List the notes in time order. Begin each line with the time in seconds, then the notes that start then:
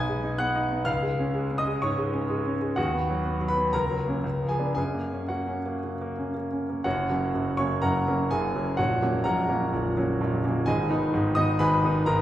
Already playing: B1 B3 D#4 B4 D#5 G#5 B5 D#6 G#6
0.09 G#3
0.24 D#4
0.38 B3 F#5 F#6
0.55 D#4
0.71 B3
0.85 C#2 F5 F6
1.03 G#3
1.19 C#4
1.34 G#3
1.51 C#4
1.58 D#5 D#6
1.67 G#3
1.82 G#2 C#5 C#6
1.98 G#3
2.13 C#4
2.30 G#3
2.46 C#4
2.61 G#3
2.76 D#2 F#4 F#5
2.94 B3
3.10 F#3
3.26 B3
3.41 F#3
3.48 B4 B5
3.57 B3
3.73 C#2 A#4 A#5
3.90 F#3
4.08 A#3 C#4
4.24 C#2
4.42 F3
4.49 G#4 G#5
4.59 B3 D4
4.75 F#2 G#4 G#5
4.94 A#3
5.12 C#4
5.29 A#3 F#4 F#5
5.47 C#4
5.66 A#3
5.84 C#3
6.01 A#3
6.18 C#4
6.34 A#3
6.52 C#4
6.70 A#3
6.84 F#1 F#2 F#4 C#5 F#5
7.10 F#3 A#3 C#4
7.34 F#1 F#2
7.57 F#3 A#3 C#4 C#5 C#6
7.82 F#1 F#2 A#4 F#5 A#5
8.07 F#3 A#3 C#4
8.31 F#1 F#2 G#4 G#5
8.55 F#3 A#3 C#4
8.77 A#0 A#1 F#4 C#5 F#5
9.02 F#3 A#3 C#4
9.24 A#0 A#1 A#4 F#5 A#5
9.49 F#3 A#3 C#4
9.73 A#0 A#1
9.97 F#3 A#3 C#4
10.21 A#0 A#1
10.44 F#3 A#3 C#4
10.66 G#1 G#2 G#4 D#5 G#5
10.90 D#3 B3 D#4
11.14 G#1 G#2
11.35 D#3 B3 D#4 D#5 D#6
11.59 G#1 G#2 B4 G#5 B5
11.84 D#3 B3 D#4
12.06 G#1 G#2 A#4 A#5